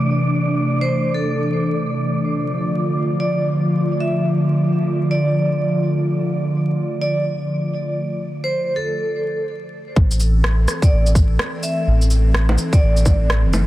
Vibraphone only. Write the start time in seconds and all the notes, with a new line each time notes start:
0.81 C5
1.14 A4
3.20 D5
4.00 E5
5.11 D5
7.02 D5
8.44 C5
8.76 A4
10.83 D5
11.63 E5
12.73 D5